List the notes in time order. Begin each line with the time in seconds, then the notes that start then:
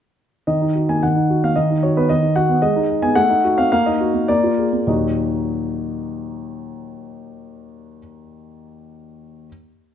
0.47 D#3 D#5
0.62 D#4
0.75 F#4
0.89 A#3 G#5
1.03 D#3 F#5
1.16 D#4
1.30 F#4
1.44 A#3 F5
1.56 D#3 D#5
1.70 D#4
1.83 F#4 C#5
1.96 B3 B4
2.09 D#3 D#5
2.22 D#4
2.36 F#4 F#5
2.49 B3
2.62 G#3 D#5
2.76 D#4
2.89 G#4
3.02 B3 G#5
3.15 A3 F#5
3.30 D#4
3.44 F#4
3.58 C4 F5
3.72 A#3 F5
3.86 D#4 D#5
4.01 F#4
4.14 A#3
4.28 A#3 D5
4.44 F4
4.58 G#4
4.73 A#3
4.87 D#2 A#2 F#3 A#3 D#4 F#4 D#5